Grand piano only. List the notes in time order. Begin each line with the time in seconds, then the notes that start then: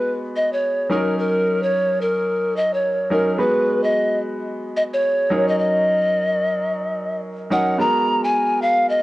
Already playing: G#3 B3 F#4 B4
0.90 F#3 C#4 D#4 A#4
3.10 F#3 C#4 D#4 A#4
3.38 G#3 B3 F#4 B4
5.30 F#3 C#4 D#4 A#4
7.50 F#3 C#4 D#4 A#4
7.78 G#3 B3 F#4 A#4